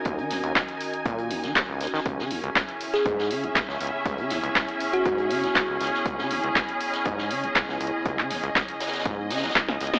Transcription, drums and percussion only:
0.05 kick loud
0.05 closed hi-hat medium
0.18 closed hi-hat soft
0.30 snare soft
0.30 closed hi-hat medium
0.30 open hi-hat loud
0.43 closed hi-hat soft
0.56 kick loud
0.56 snare loud
0.56 clap loud
0.56 closed hi-hat medium
0.69 closed hi-hat soft
0.81 closed hi-hat medium
0.81 open hi-hat medium
0.94 closed hi-hat soft
1.06 kick loud
1.06 closed hi-hat medium
1.18 closed hi-hat soft
1.30 closed hi-hat medium
1.30 open hi-hat loud
1.43 snare soft
1.43 closed hi-hat soft
1.55 kick loud
1.55 snare loud
1.55 clap loud
1.55 closed hi-hat medium
1.81 snare soft
1.81 closed hi-hat medium
1.81 open hi-hat medium
1.87 closed hi-hat medium
1.93 snare soft
2.06 kick loud
2.06 closed hi-hat medium
2.19 snare soft
2.31 closed hi-hat medium
2.31 open hi-hat loud
2.44 closed hi-hat soft
2.56 kick loud
2.56 snare loud
2.56 clap loud
2.56 closed hi-hat medium
2.69 closed hi-hat soft
2.81 closed hi-hat medium
2.81 open hi-hat medium
2.94 snare soft
2.94 closed hi-hat soft
3.05 kick loud
3.05 closed hi-hat medium
3.19 snare medium
3.31 closed hi-hat medium
3.31 open hi-hat loud
3.44 closed hi-hat soft
3.55 kick loud
3.55 snare loud
3.55 clap loud
3.55 closed hi-hat medium
3.69 snare soft
3.80 closed hi-hat medium
3.80 open hi-hat medium
3.87 closed hi-hat medium
4.05 kick loud
4.05 closed hi-hat medium
4.18 closed hi-hat soft
4.30 snare soft
4.30 closed hi-hat medium
4.30 open hi-hat loud
4.44 closed hi-hat soft
4.55 kick loud
4.55 snare loud
4.55 clap loud
4.55 closed hi-hat medium
4.69 closed hi-hat soft
4.80 closed hi-hat medium
4.80 open hi-hat medium
4.94 closed hi-hat soft
5.06 kick loud
5.06 closed hi-hat medium
5.18 closed hi-hat soft
5.31 closed hi-hat medium
5.31 open hi-hat loud
5.44 snare soft
5.44 closed hi-hat medium
5.55 kick loud
5.55 snare loud
5.55 clap loud
5.55 closed hi-hat medium
5.81 snare soft
5.81 closed hi-hat medium
5.81 open hi-hat medium
5.87 closed hi-hat medium
5.94 snare soft
6.06 kick loud
6.06 closed hi-hat medium
6.18 snare soft
6.31 closed hi-hat medium
6.31 open hi-hat loud
6.44 closed hi-hat medium
6.55 kick loud
6.55 snare loud
6.55 clap loud
6.55 closed hi-hat medium
6.69 closed hi-hat medium
6.80 closed hi-hat medium
6.80 open hi-hat medium
6.93 snare medium
6.93 closed hi-hat medium
7.05 kick loud
7.05 closed hi-hat medium
7.18 snare medium
7.30 closed hi-hat medium
7.30 open hi-hat loud
7.44 closed hi-hat medium
7.55 kick loud
7.55 snare loud
7.55 clap loud
7.55 closed hi-hat medium
7.69 snare soft
7.81 closed hi-hat medium
7.81 open hi-hat medium
7.87 closed hi-hat medium
8.06 kick loud
8.06 closed hi-hat medium
8.19 clap soft
8.19 closed hi-hat soft
8.30 snare soft
8.30 closed hi-hat medium
8.30 open hi-hat loud
8.43 closed hi-hat soft
8.43 closed hi-hat medium
8.55 kick loud
8.55 snare loud
8.55 clap loud
8.55 closed hi-hat medium
8.55 closed hi-hat soft
8.69 closed hi-hat medium
8.80 snare medium
8.80 closed hi-hat medium
8.80 open hi-hat medium
8.87 snare medium
8.87 closed hi-hat medium
8.93 snare medium
8.93 closed hi-hat medium
8.93 closed hi-hat soft
9.00 snare medium
9.00 closed hi-hat medium
9.06 kick loud
9.06 closed hi-hat medium
9.30 snare medium
9.30 closed hi-hat medium
9.30 open hi-hat loud
9.37 snare medium
9.37 closed hi-hat medium
9.44 snare loud
9.44 closed hi-hat medium
9.49 snare medium
9.49 closed hi-hat medium
9.56 kick loud
9.56 snare medium
9.56 snare loud
9.56 clap loud
9.56 closed hi-hat medium
9.69 snare medium
9.80 snare soft
9.80 closed hi-hat medium
9.80 open hi-hat medium
9.87 closed hi-hat medium
9.94 snare medium
9.94 snare soft

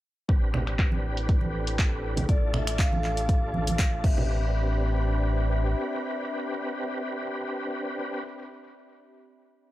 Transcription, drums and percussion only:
0.29 kick loud
0.29 closed hi-hat soft
0.54 finger snap medium
0.54 low conga medium
0.67 finger snap medium
0.67 closed hi-hat medium
0.79 kick loud
0.79 clap loud
0.79 closed hi-hat soft
0.92 high conga medium
1.17 closed hi-hat medium
1.29 kick loud
1.29 closed hi-hat medium
1.41 high conga medium
1.67 closed hi-hat medium
1.79 kick loud
1.79 clap loud
1.79 closed hi-hat medium
2.17 closed hi-hat medium
2.17 high conga medium
2.17 low conga medium
2.29 kick loud
2.29 closed hi-hat soft
2.54 finger snap medium
2.54 low conga medium
2.67 finger snap medium
2.67 closed hi-hat medium
2.79 kick loud
2.79 clap loud
2.79 closed hi-hat soft
2.93 high conga medium
3.04 clap soft
3.17 closed hi-hat medium
3.29 kick loud
3.29 closed hi-hat medium
3.54 high conga medium
3.67 closed hi-hat medium
3.67 high conga medium
3.79 kick loud
3.79 clap loud
3.79 closed hi-hat soft
4.04 kick loud
4.04 crash medium
4.18 low conga medium

